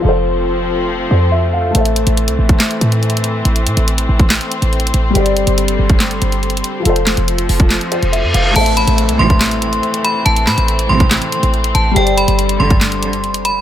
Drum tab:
CC |------------------------------------------------|------------------------------------------------|------------------------------------------------|------------------------------------------------|
HH |------------------------------------------------|x--x--x--x--x--x-----x--x--x--x--x--x-x-x-x-----|x--x--x--x--x--x-----x--x--x--x--x--x-x-x-x-----|x--x--x--x--x--x-----x--x--x--x--x--x-x-x-x-----|
CP |------------------------------------------------|------------------------x-----------------------|------------------------x-----------------------|------------------------x-----------------------|
SD |------------------------------------------------|------------------------o-----------------------|------------------------o-----------------------|------------------------o-----------------------|
BD |------------------------------------------------|---------------------o--------------------------|---------------------o--------------------------|---------------------o--------------------------|

CC |------------------------------------------------|x-----------------------------------------------|------------------------------------------------|------------------------------------------------|
HH |x--x--x--x--x--x--o--x--x--x--x--x--x-----x-----|x--x--x--x--x--x-----x--x--x--x--x--x--x--x-----|x--x--x--x--x--x-----x--x--x--x--x--x--x--x-----|x--x--x--x--x--x-----x--x--x--x--x--x--x--x-----|
CP |------x-----------------x-----------------------|------------------------x-----------------------|------x-----------------x-----------------------|------------------------x-----------------------|
SD |------o-----------------o-----------------------|------------------------o-----------------------|------o-----------------o-----------------------|------------------------o-----------------------|
BD |---------------------o--------------------------|---------------------o--------------------------|---------------------o--------------------------|---------------------o--------------------------|